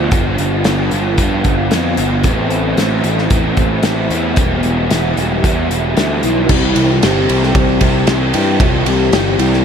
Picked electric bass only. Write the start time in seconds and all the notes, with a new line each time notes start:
0.12 G1
0.39 G1
0.65 G1
0.92 G1
1.18 G2
1.45 G1
1.71 F2
1.98 G1
2.24 A1
2.78 A1
3.04 A1
3.30 A1
3.57 A1
3.84 A1
4.10 E2
4.37 E1
4.64 E1
4.90 E1
5.16 E1
5.44 E2
5.70 E1
5.97 D2
6.24 B1
6.49 C2
6.76 C2
7.03 G1
7.29 C2
7.54 C2
7.81 C2
8.08 C2
8.34 G2
8.60 C2
8.86 C2
9.12 G1
9.39 C2